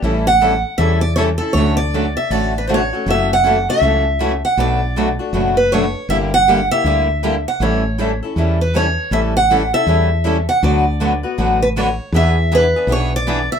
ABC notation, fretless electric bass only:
X:1
M:4/4
L:1/8
Q:"Swing" 1/4=159
K:D
V:1 name="Fretless electric bass" clef=bass
A,,,4 E,,4 | D,,4 A,,,4 | F,,,4 C,,4 | B,,,4 F,,,4 |
G,,,4 D,,4 | A,,,4 E,,4 | A,,,4 E,,4 | D,,4 A,,,4 |
E,,4 B,,,4 |]